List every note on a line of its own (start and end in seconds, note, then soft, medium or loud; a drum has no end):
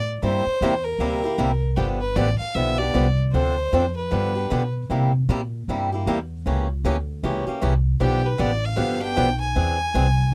0.00 0.22 A2 medium
0.22 0.45 G2 medium
0.22 0.43 C3 medium
0.22 0.44 G3 medium
0.22 0.44 A#3 medium
0.22 0.44 E4 medium
0.22 0.44 G4 medium
0.22 0.86 C5 loud
0.46 muted upright bass stroke soft
0.61 0.98 E2 medium
0.61 0.73 C3 medium
0.61 0.73 G3 medium
0.61 0.73 A#3 medium
0.61 0.73 E4 medium
0.61 0.73 G4 medium
0.85 1.63 A#4 medium
0.99 1.37 D2 medium
0.99 1.21 C3 medium
0.99 1.21 G3 medium
0.99 1.21 A#3 medium
0.99 1.22 E4 medium
0.99 1.22 G4 medium
1.24 1.38 A#3 soft
1.24 1.38 E4 medium
1.24 1.38 G4 medium
1.38 1.76 C2 medium
1.38 1.50 C3 medium
1.38 1.50 G3 medium
1.38 1.50 A#3 medium
1.38 1.50 E4 medium
1.38 1.51 G4 medium
1.76 2.15 G1 medium
1.76 1.98 D3 medium
1.76 1.99 F3 medium
1.76 1.99 B3 medium
1.76 1.99 D4 medium
1.76 1.88 G4 medium
1.76 1.99 G4 medium
2.01 2.17 B4 medium
2.16 2.39 A1 medium
2.16 2.28 D3 medium
2.16 2.28 F3 medium
2.16 2.28 B3 medium
2.16 2.28 D4 medium
2.16 2.28 G4 medium
2.16 2.38 D5 medium
2.39 2.56 F5 medium
2.39 muted upright bass stroke soft
2.55 2.93 B1 medium
2.55 2.77 D3 medium
2.55 2.77 F3 medium
2.55 2.77 B3 medium
2.55 2.77 D4 medium
2.55 2.77 G4 medium
2.55 2.79 E5 medium
2.78 2.93 B3 soft
2.78 2.94 D4 medium
2.78 2.94 G4 medium
2.78 3.18 D5 medium
2.94 3.32 C2 medium
2.94 3.05 D3 medium
2.94 3.05 F3 medium
2.94 3.06 B3 medium
2.94 3.06 D4 medium
2.94 3.06 G4 medium
3.32 3.71 D2 medium
3.32 3.55 D3 medium
3.32 3.55 F3 medium
3.32 3.55 C4 medium
3.32 3.55 D4 medium
3.32 3.55 A4 medium
3.32 3.92 C5 medium
3.73 4.10 F2 medium
3.73 3.84 D3 medium
3.73 3.84 F3 medium
3.73 3.84 C4 medium
3.73 3.84 D4 medium
3.73 3.84 A4 medium
3.97 4.70 B4 medium
4.11 4.49 G2 medium
4.11 4.32 D3 medium
4.11 4.32 F3 medium
4.11 4.33 B3 medium
4.11 4.33 D4 medium
4.11 4.33 G4 medium
4.35 4.50 B3 soft
4.35 4.50 D4 soft
4.35 4.50 G4 medium
4.50 4.89 B2 medium
4.50 4.61 D3 medium
4.50 4.62 F3 medium
4.50 4.62 B3 medium
4.50 4.62 D4 medium
4.50 4.62 G4 medium
4.90 5.27 C3 medium
4.90 5.10 C3 medium
4.90 5.11 G3 medium
4.90 5.11 A#3 medium
4.90 5.11 E4 medium
4.90 5.11 G4 medium
5.29 5.66 A#2 medium
5.29 5.40 C3 medium
5.29 5.40 G3 medium
5.29 5.40 A#3 medium
5.29 5.40 E4 medium
5.29 5.40 G4 loud
5.68 6.05 G2 medium
5.68 5.89 C3 medium
5.68 5.89 G3 medium
5.68 5.89 A#3 medium
5.68 5.89 E4 medium
5.68 5.90 G4 medium
5.92 6.06 A#3 soft
5.92 6.07 E4 soft
5.92 6.06 G4 medium
6.06 6.44 E2 medium
6.06 6.18 C3 medium
6.06 6.18 G3 medium
6.06 6.18 A#3 medium
6.06 6.18 E4 medium
6.06 6.18 G4 medium
6.46 6.83 C#2 medium
6.46 6.66 C#3 medium
6.46 6.67 E3 medium
6.46 6.67 A#3 medium
6.46 6.67 C#4 medium
6.46 6.67 G4 medium
6.84 7.22 D2 medium
6.84 6.95 C#3 medium
6.84 6.95 E3 medium
6.84 6.96 A#3 medium
6.84 6.96 C#4 medium
6.84 6.96 G4 medium
7.23 7.45 C#2 medium
7.23 7.44 C#3 medium
7.23 7.44 E3 medium
7.23 7.44 A#3 medium
7.23 7.44 C#4 medium
7.23 7.45 G4 medium
7.47 7.61 A#3 soft
7.47 7.61 C#4 medium
7.47 7.61 G4 medium
7.47 muted upright bass stroke soft
7.61 8.00 C2 medium
7.61 7.73 C#3 medium
7.61 7.73 E3 medium
7.61 7.73 A#3 medium
7.61 7.73 C#4 medium
7.61 7.73 G4 medium
8.00 8.38 B1 medium
8.00 8.21 D3 medium
8.00 8.21 F3 medium
8.00 8.21 B3 medium
8.00 8.22 D4 medium
8.00 8.22 G4 medium
8.00 8.28 G4 medium
8.27 8.42 B4 medium
8.38 8.77 A1 medium
8.38 8.50 D3 medium
8.38 8.50 F3 medium
8.38 8.50 B3 medium
8.38 8.50 D4 medium
8.38 8.51 G4 medium
8.38 8.66 D5 medium
8.65 9.02 F5 medium
8.76 9.15 G1 medium
8.76 8.98 D3 medium
8.76 8.98 F3 medium
8.76 8.98 B3 medium
8.76 8.98 D4 medium
8.76 8.99 G4 medium
9.00 9.16 B3 soft
9.00 9.16 D4 medium
9.00 9.16 G4 medium
9.00 9.38 G5 loud
9.16 9.55 B1 medium
9.16 9.27 D3 medium
9.16 9.28 F3 medium
9.16 9.28 B3 medium
9.16 9.28 D4 medium
9.16 9.28 G4 medium
9.41 10.34 G#5 medium
9.56 9.94 E2 medium
9.56 9.77 E3 medium
9.56 9.77 C4 medium
9.56 9.77 D4 medium
9.56 9.77 G#4 medium
9.94 10.31 C2 medium
9.94 10.06 E3 medium
9.94 10.06 C4 medium
9.94 10.06 D4 medium
9.94 10.07 G#4 medium